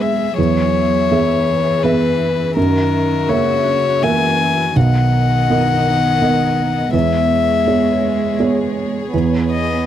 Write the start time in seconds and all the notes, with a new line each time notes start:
Already playing: E2 F#3 G#3 B3 G#4 E5
0.01 E5
0.37 E2 F#3 B3 C#5
1.10 E3 B3 G#4 E5
1.83 B3 G#4 B4 E5
2.56 F#2 D#3 C#4 F#4 A#4 E5
3.28 C#3 A#3 A#4 C#5 E5
4.03 E3 A#3 A#4 E5 G#5
4.76 B1 D#3 B3 A#4 D#5 F#5
5.50 B3 A#4 D#5
6.22 B3 A#4 D#5
6.93 E2 G#3 G#4 C#5 E5
7.67 B3 G#4 C#5
8.39 B3 G#4 C#5
9.12 E2 B3
9.51 D#5